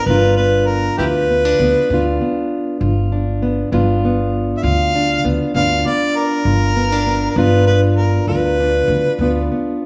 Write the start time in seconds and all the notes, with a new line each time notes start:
0.06 G1 G2 B3 D4 B4
0.10 F4
0.36 B3 B4
0.67 A#4
0.98 D2 G2 E4 F4 G4 B4
1.30 B3
1.45 D4
1.59 D2 B3
1.90 D2 G2 B3 D4 F4
2.21 B3
2.80 G1 G2 F4
3.12 D4
3.42 B3
3.72 G1 G2 B3 D4 F4
4.05 B3
4.57 E5
4.63 D2 G2 F4 F5
4.95 D4
5.24 D2 B3
5.54 D2 G2 B3 D4 F4 F5
5.86 B3 D5
6.16 A#4
6.45 G1 G2 F4
6.76 B3
6.92 D4
7.06 B3
7.30 A#4
7.36 G1 G2 B3 D4 F4 B4
7.67 B3 B4
7.96 A#4
8.27 D2 G2 F4 B4
8.60 D4
8.88 D2 B3
9.19 D2 G2 B3 D4
9.23 F4
9.52 B3